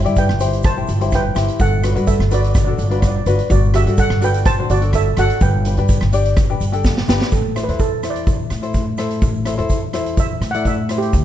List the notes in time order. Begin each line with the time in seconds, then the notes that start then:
Already playing: G4 E5
0.05 G2 E4 G4 D5, closed hi-hat, shaker
0.16 B4 G5, kick, closed hi-hat, shaker
0.29 G1, cross-stick
0.40 E4 G4 C5, closed hi-hat, shaker
0.53 closed hi-hat
0.63 C5 A5, kick, cross-stick, closed hi-hat, shaker
0.76 E4 G4 C5, shaker
0.87 G1, closed hi-hat, shaker
1.00 E4 G4 C5, closed hi-hat
1.11 G5, kick, cross-stick, closed hi-hat, shaker
1.15 B4
1.35 G1 E4 G4 C5, cross-stick, closed hi-hat, shaker
1.48 closed hi-hat
1.60 G1 A4 F#5, kick, closed hi-hat, shaker
1.72 shaker
1.83 D4 F#4 B4, cross-stick, closed hi-hat, shaker
1.95 G2 D4 F#4 B4, closed hi-hat, shaker
2.07 A4 E5, kick, closed hi-hat, shaker
2.19 G1, cross-stick
2.31 D4 F#4 B4 D5, closed hi-hat, shaker
2.41 D5, closed hi-hat, shaker
2.50 D5
2.54 D5, kick, cross-stick, closed hi-hat, shaker
2.65 D4 F#4 A4 D5
2.71 D5
2.78 G1 D5, closed hi-hat, shaker
2.84 D5
2.90 D4 F#4 B4 D5, closed hi-hat
3.00 D5, kick, cross-stick, closed hi-hat, shaker
3.07 D5
3.16 D5
3.26 G1 D4 F#4 B4, closed hi-hat, shaker
3.39 closed hi-hat
3.50 G1 F#4 D5, kick, closed hi-hat, shaker
3.63 shaker
3.74 D4 F#4 G4 A4 E5, cross-stick, closed hi-hat, shaker
3.86 G2 D4 F#4 A4, closed hi-hat, shaker
3.97 A4 F#5, kick, closed hi-hat, shaker
4.10 G1, cross-stick
4.21 D4 F#4 A4 B4 G5, closed hi-hat, shaker
4.34 closed hi-hat
4.46 C5 A5, kick, cross-stick, closed hi-hat, shaker
4.58 D4 F#4 C5
4.70 G1 F#4 D5, closed hi-hat, shaker
4.81 D4 F#4 A4, closed hi-hat
4.93 A4 E5, kick, cross-stick, closed hi-hat, shaker
5.17 G1 D4 F#4 A4 F#5, cross-stick, closed hi-hat, shaker
5.30 closed hi-hat
5.41 G1 B4 G5, kick, closed hi-hat, shaker
5.65 D4 G4 B4, closed hi-hat, shaker
5.77 G2 D4 G4 B4, closed hi-hat
5.89 kick, closed hi-hat, shaker
6.01 G1, cross-stick
6.13 D4 G4 D5, closed hi-hat, shaker
6.25 closed hi-hat
6.37 kick, cross-stick, closed hi-hat, shaker
6.49 D4 G4 B4, shaker
6.60 G1, closed hi-hat, shaker
6.72 D4 G4 A4, closed hi-hat
6.84 kick, snare, shaker
6.97 snare
7.08 G1 D4 G4 B4, snare, shaker
7.21 snare, shaker
7.31 A1 A4, kick, closed hi-hat, shaker
7.55 E4 A4 C5, cross-stick, closed hi-hat, shaker
7.64 B4
7.68 E2 E4 A4 C5, closed hi-hat
7.79 A4, kick, closed hi-hat, shaker
8.03 E4 A4 C5, cross-stick, closed hi-hat, shaker
8.10 D5
8.16 closed hi-hat
8.27 kick, closed hi-hat, shaker
8.40 shaker
8.50 A2, cross-stick, closed hi-hat, shaker
8.62 E4 A4 C5, closed hi-hat, shaker
8.74 kick, closed hi-hat, shaker
8.97 E4 A4 C5, cross-stick, closed hi-hat, shaker
9.11 closed hi-hat
9.22 A1, kick, closed hi-hat, shaker
9.35 shaker
9.45 E4 A4 C5, cross-stick, closed hi-hat, shaker
9.58 E2 E4 A4 C5, closed hi-hat
9.69 kick, closed hi-hat, shaker
9.93 E4 A4 C5, cross-stick, closed hi-hat, shaker
10.06 closed hi-hat
10.17 E5, kick, closed hi-hat, shaker
10.41 A2, cross-stick, closed hi-hat, shaker
10.51 E4 A4 F#5, closed hi-hat, shaker
10.55 D5
10.65 E5, kick, closed hi-hat, shaker
10.89 E4 A4 C5, cross-stick, closed hi-hat, shaker
10.98 G4
11.02 closed hi-hat
11.13 D2, kick, closed hi-hat, shaker